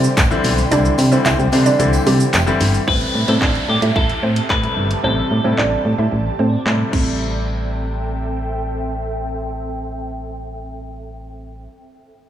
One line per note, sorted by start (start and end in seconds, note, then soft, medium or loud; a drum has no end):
0.00 0.18 D3 medium
0.00 0.18 E3 medium
0.00 0.18 G3 medium
0.00 0.18 C4 medium
0.00 0.18 E4 medium
0.00 2.84 E4 medium
0.00 2.84 C5 medium
0.00 0.69 D5 medium
0.00 2.84 G5 medium
0.00 shaker medium
0.17 0.35 A1 medium
0.17 kick loud
0.17 clap loud
0.17 closed hi-hat medium
0.17 tambourine medium
0.17 shaker medium
0.30 0.64 D3 medium
0.30 0.64 E3 medium
0.30 0.64 G3 medium
0.30 0.64 C4 medium
0.30 0.64 E4 loud
0.30 shaker medium
0.44 0.62 B1 loud
0.44 open hi-hat medium
0.44 tambourine soft
0.44 shaker medium
0.57 tambourine soft
0.57 shaker medium
0.71 0.89 C2 loud
0.71 1.04 D3 medium
0.71 1.05 E3 medium
0.71 1.04 G3 medium
0.71 1.05 C4 medium
0.71 0.83 D4 medium
0.71 1.05 E4 medium
0.71 0.83 D5 loud
0.71 2.86 E5 medium
0.71 closed hi-hat medium
0.71 tambourine soft
0.71 shaker medium
0.85 shaker medium
0.98 1.16 C3 loud
0.98 open hi-hat loud
0.98 tambourine medium
0.98 shaker medium
1.11 1.45 D3 medium
1.11 1.45 E3 medium
1.11 1.45 G3 medium
1.11 1.45 C4 medium
1.11 1.24 C4 medium
1.11 1.45 E4 medium
1.11 1.23 C5 medium
1.11 tambourine soft
1.11 shaker medium
1.25 1.34 C2 loud
1.25 1.37 E4 medium
1.25 1.37 E5 medium
1.25 clap loud
1.25 closed hi-hat medium
1.25 tambourine medium
1.25 shaker medium
1.39 1.48 C2 loud
1.39 shaker medium
1.52 1.70 C3 loud
1.52 1.75 D3 medium
1.52 1.74 E3 medium
1.52 1.74 G3 medium
1.52 1.75 C4 medium
1.52 1.75 D4 medium
1.52 open hi-hat medium
1.52 tambourine medium
1.52 shaker medium
1.66 1.78 D4 medium
1.66 1.77 D5 medium
1.66 tambourine soft
1.66 shaker medium
1.79 1.97 C2 loud
1.79 2.34 D3 medium
1.79 2.34 E3 medium
1.79 2.34 G3 medium
1.79 2.35 C4 medium
1.79 2.35 E4 medium
1.79 closed hi-hat medium
1.79 shaker medium
1.93 tambourine medium
1.93 shaker medium
2.06 2.24 C3 loud
2.06 2.30 G3 medium
2.06 2.29 G4 medium
2.06 open hi-hat medium
2.06 tambourine medium
2.06 shaker medium
2.20 tambourine soft
2.20 shaker medium
2.33 2.51 F1 medium
2.33 clap loud
2.33 closed hi-hat medium
2.33 tambourine medium
2.33 shaker medium
2.46 2.80 D3 medium
2.46 2.80 E3 medium
2.46 2.80 G3 medium
2.46 2.80 C4 medium
2.46 2.80 E4 loud
2.46 shaker medium
2.60 2.78 G1 loud
2.60 open hi-hat medium
2.60 tambourine soft
2.60 shaker medium
2.74 shaker medium
2.87 3.05 A1 loud
2.87 3.21 C3 medium
2.87 3.21 G3 medium
2.87 3.21 A3 medium
2.87 6.89 C4 medium
2.87 3.11 C4 medium
2.87 3.21 E4 medium
2.87 6.89 G4 medium
2.87 3.29 B4 loud
2.87 3.10 C5 loud
2.87 5.02 E5 medium
2.87 6.89 A5 medium
2.87 kick loud
2.87 downlifter medium
3.01 closed hi-hat medium
3.15 3.24 A2 loud
3.28 3.37 A2 loud
3.28 4.16 C3 medium
3.28 4.16 G3 medium
3.28 4.16 A3 medium
3.28 3.40 C4 medium
3.28 4.16 E4 medium
3.28 3.69 A4 loud
3.28 3.39 C5 medium
3.28 closed hi-hat medium
3.42 3.59 A1 loud
3.42 3.53 D4 medium
3.42 3.53 D5 medium
3.42 kick loud
3.42 clap loud
3.55 closed hi-hat soft
3.69 3.77 A2 loud
3.69 3.77 G4 medium
3.82 3.91 A2 loud
3.82 3.94 E4 medium
3.82 3.94 E5 medium
3.82 closed hi-hat medium
3.96 4.13 A1 loud
3.96 4.19 E4 medium
3.96 4.46 A4 medium
3.96 4.18 E5 medium
3.96 kick loud
4.09 closed hi-hat soft
4.23 4.40 A2 loud
4.23 4.35 C4 medium
4.23 4.34 C5 medium
4.36 closed hi-hat medium
4.50 4.68 A2 loud
4.50 5.00 B4 medium
4.50 kick loud
4.50 clap loud
4.63 4.96 C3 medium
4.63 4.96 G3 medium
4.63 4.97 A3 medium
4.63 4.97 E4 medium
4.63 closed hi-hat soft
4.77 4.94 G1 loud
4.91 closed hi-hat medium
5.04 5.21 A1 loud
5.04 5.37 C3 medium
5.04 5.37 G3 medium
5.04 5.37 A3 medium
5.04 5.16 C4 medium
5.04 5.37 E4 medium
5.04 6.62 A4 medium
5.04 5.15 C5 loud
5.04 6.91 D5 medium
5.31 5.40 A2 loud
5.44 5.53 A2 medium
5.44 6.33 C3 medium
5.44 6.33 G3 medium
5.44 6.33 A3 medium
5.44 5.56 C4 medium
5.44 6.33 E4 medium
5.44 5.56 C5 medium
5.58 5.76 A1 medium
5.58 5.70 D4 medium
5.58 5.69 D5 medium
5.58 clap loud
5.85 5.94 A2 medium
5.98 6.07 A2 medium
5.98 6.10 E4 medium
5.98 6.10 E5 medium
6.12 6.30 A1 loud
6.39 6.57 A2 loud
6.39 6.62 C4 medium
6.39 6.62 C5 medium
6.66 6.84 A2 loud
6.66 6.90 C3 medium
6.66 6.91 G3 medium
6.66 6.92 A3 medium
6.66 6.93 E4 medium
6.66 clap loud
6.91 11.67 A1 loud
6.91 11.65 C3 medium
6.91 11.66 G3 medium
6.91 11.68 A3 medium
6.91 11.67 C4 medium
6.91 8.78 C4 medium
6.91 11.69 E4 medium
6.91 11.67 A4 medium
6.91 11.67 E5 medium
6.91 11.67 G5 medium
6.91 kick loud
6.91 crash medium